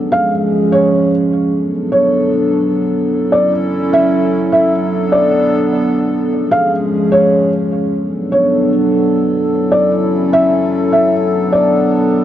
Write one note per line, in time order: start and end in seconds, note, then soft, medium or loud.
0.00 1.51 F3 medium
0.00 1.51 G#3 medium
0.00 1.51 C#4 medium
0.00 1.51 G#4 medium
0.12 0.31 F5 medium
0.72 1.10 C#5 medium
1.52 6.28 F#3 medium
1.52 3.10 B3 medium
1.52 3.10 D4 medium
1.52 3.10 A4 medium
1.92 2.30 C#5 medium
3.12 4.71 C#4 medium
3.12 4.70 E4 medium
3.12 4.70 A4 medium
3.32 3.51 D5 medium
3.93 4.49 E5 medium
4.52 4.71 E5 medium
4.72 6.31 B3 medium
4.72 6.30 D4 medium
4.72 6.30 A4 medium
5.12 5.50 D5 medium
6.32 7.91 F3 medium
6.32 7.90 G#3 medium
6.32 7.90 C#4 medium
6.32 7.90 G#4 medium
6.51 6.71 F5 medium
7.12 7.50 C#5 medium
7.92 12.24 F#3 medium
7.92 9.51 B3 medium
7.92 9.51 D4 medium
7.92 12.24 A4 medium
8.32 8.70 C#5 medium
9.52 11.11 C#4 medium
9.52 11.11 E4 medium
9.72 9.91 D5 medium
10.33 10.89 E5 medium
10.92 11.11 E5 medium
11.12 12.24 B3 medium
11.12 12.24 D4 medium
11.52 11.90 D5 medium